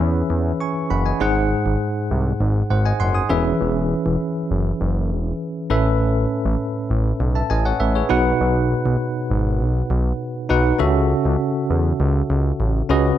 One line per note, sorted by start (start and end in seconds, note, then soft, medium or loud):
0.00 0.23 E2 medium
0.00 1.22 E3 medium
0.00 1.22 C#4 medium
0.00 1.21 G#4 medium
0.00 1.22 B4 medium
0.00 1.22 E5 medium
0.30 0.53 E2 medium
0.60 0.89 G#5 soft
0.60 0.89 C#6 medium
0.90 1.13 F#1 medium
0.90 1.05 F#5 soft
0.90 1.05 B5 medium
1.06 1.34 D#5 soft
1.06 1.34 G#5 medium
1.20 1.54 G#1 loud
1.20 2.07 G#2 medium
1.20 2.17 D#4 medium
1.20 2.17 G#4 medium
1.20 2.18 C5 medium
1.20 2.18 F#5 medium
1.66 1.77 G#1 medium
2.11 2.33 C2 medium
2.40 2.63 G#1 medium
2.70 2.93 G#1 medium
2.70 2.85 C5 medium
2.70 2.85 F#5 medium
2.86 3.00 D#5 medium
2.86 3.00 G#5 medium
3.00 3.23 F#1 medium
3.00 3.15 F#5 medium
3.00 3.14 C6 medium
3.15 3.44 G#5 soft
3.15 3.43 D#6 medium
3.29 3.53 E1 loud
3.29 4.16 E3 medium
3.29 4.27 C#4 medium
3.29 4.27 G#4 medium
3.29 4.27 B4 medium
3.29 4.27 E5 medium
3.61 3.94 E1 loud
4.06 4.17 E1 medium
4.51 4.73 F#1 medium
4.81 5.12 F#1 medium
5.11 5.33 E1 medium
5.70 6.26 A1 medium
5.70 6.56 A2 medium
5.70 6.67 C#4 medium
5.70 6.67 A4 medium
5.70 6.67 B4 medium
5.70 6.68 E5 medium
6.45 6.56 A1 medium
6.90 7.13 A1 loud
7.20 7.43 B1 loud
7.35 7.50 E5 soft
7.35 7.50 A5 medium
7.50 7.73 A1 loud
7.50 7.65 D#5 medium
7.50 7.64 G#5 medium
7.65 7.80 C#5 medium
7.65 7.80 F#5 medium
7.80 8.03 A1 medium
7.80 7.94 B4 medium
7.80 7.94 E5 medium
7.95 8.24 G#4 soft
7.95 8.24 C#5 medium
8.09 8.33 B1 loud
8.09 8.96 B2 medium
8.09 9.07 D#4 medium
8.09 9.07 F#4 medium
8.09 9.07 B4 medium
8.09 9.07 F#5 medium
8.41 8.74 B1 loud
8.86 8.97 B1 medium
9.31 9.62 G#1 medium
9.60 9.83 B1 loud
9.90 10.13 B1 loud
10.49 10.73 B1 medium
10.49 10.74 D#4 medium
10.49 10.74 F#4 medium
10.49 10.74 B4 medium
10.49 10.74 F#5 medium
10.79 11.14 C#2 loud
10.79 11.66 C#3 medium
10.79 11.76 C#4 medium
10.79 11.77 F#4 medium
10.79 11.77 A4 medium
10.79 11.77 E5 medium
11.25 11.37 C#2 medium
11.70 11.93 E2 medium
12.00 12.23 C#2 loud
12.30 12.53 C#2 medium
12.60 12.83 A1 loud
12.89 13.12 C#2 loud
12.89 13.18 C#3 medium
12.89 13.18 C#4 medium
12.89 13.18 F#4 medium
12.89 13.18 B4 medium
12.89 13.18 D#5 medium